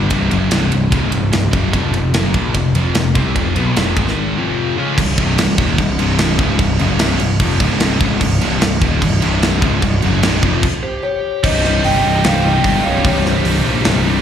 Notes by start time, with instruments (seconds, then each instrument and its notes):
Already playing: distorted electric guitar D3 G3
0.10 picked electric bass C1, distorted electric guitar C2 G2 C3, kick, ride
0.30 picked electric bass F#1, distorted electric guitar F#2 C#3 F#3, ride
0.51 picked electric bass C1, distorted electric guitar C2 G2 C3, snare, ride
0.71 picked electric bass C1, distorted electric guitar C2 G2, ride
0.91 picked electric bass C#1, distorted electric guitar C#2 G#2 C#3, kick, ride
1.11 picked electric bass C1, distorted electric guitar C2 G2, ride
1.32 picked electric bass C1, distorted electric guitar C2 G2, snare, ride
1.51 picked electric bass F#1, distorted electric guitar F#2 C#3 F#3, kick, ride
1.72 picked electric bass F1, distorted electric guitar F2 C3 F3, kick, ride
1.93 picked electric bass F1, distorted electric guitar F2 C3, ride
2.13 picked electric bass F#1, distorted electric guitar F#2 C#3 F#3, snare, ride
2.34 picked electric bass A#1, distorted electric guitar A#2 F3 A#3, kick, ride
2.54 picked electric bass F1, distorted electric guitar F2 C3, kick, ride
2.74 picked electric bass F1, distorted electric guitar F2 C3 F3, ride
2.95 picked electric bass F1, distorted electric guitar F2 C3, snare, ride
3.15 picked electric bass C2, distorted electric guitar C3 G3 C4, kick, ride
3.35 picked electric bass F1, distorted electric guitar F2 C3 F3, kick, ride
3.56 picked electric bass B1, distorted electric guitar B2 F#3 B3, ride
3.76 picked electric bass F1, distorted electric guitar F2 C3 F3, snare, ride
3.96 picked electric bass G#1, distorted electric guitar G#2 D#3 G#3, kick, ride
4.08 snare
4.36 distorted electric guitar F2 C3 F3
4.77 distorted electric guitar C#3 G#3 C#4
4.98 picked electric bass C1, distorted electric guitar C2 G2, kick, crash
5.18 picked electric bass C1, distorted electric guitar C2 G2 C3, kick, crash
5.38 picked electric bass C1, distorted electric guitar C2 G2, snare, crash
5.58 picked electric bass D#1, distorted electric guitar D#2 A#2 D#3, kick, crash
5.78 picked electric bass C1, distorted electric guitar C2 G2, kick, crash
5.99 picked electric bass C1, distorted electric guitar C2 G2 C3, crash
6.18 snare, crash
6.38 picked electric bass C#1, distorted electric guitar C#2 G#2 C#3, kick, crash
6.59 picked electric bass C1, distorted electric guitar C2 G2, kick, crash
6.79 picked electric bass F#1, distorted electric guitar F#2 C#3 F#3, crash
6.99 picked electric bass C1, distorted electric guitar C2 G2 C3, snare, crash
7.20 picked electric bass C1, distorted electric guitar C2 G2, crash
7.40 picked electric bass F1, distorted electric guitar F2 C3 F3, kick, crash
7.59 picked electric bass C#1, distorted electric guitar C#2 G#2 C#3, kick, crash
7.80 picked electric bass C1, distorted electric guitar C2 G2 C3, snare, crash
8.00 picked electric bass C#1, distorted electric guitar C#2 G#2 C#3, kick, crash
8.21 picked electric bass C1, distorted electric guitar C2 G2, kick, crash
8.41 picked electric bass C1, distorted electric guitar C2 G2 C3, crash
8.61 picked electric bass C1, distorted electric guitar C2 G2, snare, crash
8.81 picked electric bass D#1, distorted electric guitar D#2 A#2 D#3, kick, crash
9.01 picked electric bass C1, distorted electric guitar C2 G2, kick, crash
9.20 picked electric bass C1, distorted electric guitar C2 G2 C3, crash
9.43 snare, crash
9.62 picked electric bass C#1, distorted electric guitar C#2 G#2 C#3, kick, crash
9.82 picked electric bass C1, distorted electric guitar C2 G2, kick, crash
10.02 picked electric bass F#1, distorted electric guitar F#2 C#3 F#3, crash
10.23 picked electric bass C1, distorted electric guitar C2 G2 C3, snare, crash
10.43 picked electric bass F1, distorted electric guitar F2 C3 F3, kick, crash
10.63 kick, crash
10.82 lead electric guitar G4, vibraphone C5
11.03 lead electric guitar G4, vibraphone C#5
11.43 picked electric bass C1, distorted electric guitar C2 G2 G3 D#4, lead electric guitar C5, vibraphone D#5, kick, crash
11.51 distorted electric guitar C2 G2 G3 D#4
11.59 distorted electric guitar C2 G2 G3 D#4
11.65 distorted electric guitar C2 G2 G3 D#4, snare
11.74 distorted electric guitar C2 G2 G3 D#4
11.81 picked electric bass G1, distorted electric guitar C2 G2 G3 D#4, lead electric guitar D#5, vibraphone G5, open hi-hat
11.89 distorted electric guitar C2 G2 G3 D#4
11.96 distorted electric guitar C2 G2 G3 D#4
12.04 picked electric bass C1, distorted electric guitar C2 G2 G3 D#4
12.12 distorted electric guitar C2 G2 G3 D#4
12.19 distorted electric guitar C2 G2 G3 D#4
12.24 picked electric bass C1, distorted electric guitar C2 G3, lead electric guitar C5, vibraphone F5, snare, open hi-hat
12.29 distorted electric guitar G2 D#4
12.34 distorted electric guitar C2 G2 G3 D#4
12.43 distorted electric guitar C2 G2 G3 D#4, lead electric guitar D#5, vibraphone G5
12.50 distorted electric guitar C2 G2 G3 D#4
12.57 distorted electric guitar C2 G2 G3 D#4
12.64 picked electric bass G1, distorted electric guitar C2 G2 G3 D#4, kick, open hi-hat
12.73 distorted electric guitar C2 G2 G3 D#4
12.81 picked electric bass C1, distorted electric guitar C2 G2 G3 D#4, vibraphone F5
12.85 distorted electric guitar C2 G2 G3, lead electric guitar C#5
12.89 distorted electric guitar D#4
12.96 distorted electric guitar C2 G2 G3 D#4
13.04 picked electric bass C1, distorted electric guitar C2 G2 G3 D#4, lead electric guitar G4, vibraphone C#5, kick, open hi-hat
13.12 distorted electric guitar C2 G2 G3 D#4
13.19 distorted electric guitar C2 G2 G3 D#4
13.24 picked electric bass C1, distorted electric guitar G3, lead electric guitar G4, vibraphone C5, snare
13.28 distorted electric guitar C2 G2 D#4
13.35 distorted electric guitar C2 G2 G3 D#4
13.43 picked electric bass C1, distorted electric guitar C2 G2 G3 D#4, open hi-hat
13.51 distorted electric guitar C2 G2 G3 D#4
13.59 distorted electric guitar C2 G2 G3 D#4
13.64 picked electric bass A#1, distorted electric guitar C2 G3 D#4
13.68 distorted electric guitar G2
13.73 distorted electric guitar C2 G2 G3 D#4
13.81 picked electric bass C1, distorted electric guitar C2 G2 G3 D#4, open hi-hat
13.85 distorted electric guitar C2 G3 D#4, snare
13.90 distorted electric guitar G2
13.96 distorted electric guitar C2 G2 G3 D#4
14.03 distorted electric guitar C2 G2 G3 D#4
14.11 distorted electric guitar C2 G2 G3 D#4